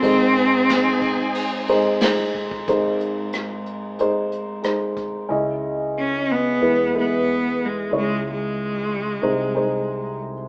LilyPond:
<<
  \new Staff \with { instrumentName = "String section" } { \time 4/4 \key gis \phrygian \tempo 4 = 91 <dis' gis' bis' gis''>1 | r1 | \key cis \minor r1 | r1 | }
  \new Staff \with { instrumentName = "Felt piano" } { \time 4/4 \key gis \phrygian <gis dis' bis'>4. r4 <gis dis' bis'>8 <gis dis' bis'>4 | <gis dis' bis'>4. r8 <gis dis' bis'>4 <gis dis' bis'>4 | \key cis \minor <cis' e' dis''>4. r8 <gis e' b'>8 <gis e' b'>4 r8 | <gis e' cis''>4. r8 <gis dis' bis'>8 <gis dis' bis'>4 r8 | }
  \new Staff \with { instrumentName = "Felt piano" } { \clef bass \time 4/4 \key gis \phrygian <gis,, gis,>1 | <gis,, gis,>1 | \key cis \minor <cis, cis>2 <e, e>2 | <cis, cis>2 <bis,, bis,>2 | }
  \new Staff \with { instrumentName = "Cello" } { \time 4/4 \key gis \phrygian bis2. r4 | r1 | \key cis \minor r4 cis'8 b4 b4 gis8 | gis8 gis2. r8 | }
  \new Staff \with { instrumentName = "Fretless electric bass" } { \clef bass \time 4/4 \key gis \phrygian gis,1 | gis,1 | \key cis \minor cis,2 e,2 | cis,2 bis,,2 | }
  \new DrumStaff \with { instrumentName = "Drums" } \drummode { \time 4/4 <bd cymr>8 cymr8 <cymr sn>8 <bd cymr>8 cymr8 cymr8 <cymr sn>8 bd16 bd16 | <hh bd>8 hh8 <hh ss>8 hh8 hh8 hh8 <hh ss>8 <hh bd>8 | r4 r4 r4 r4 | r4 r4 r4 r4 | }
>>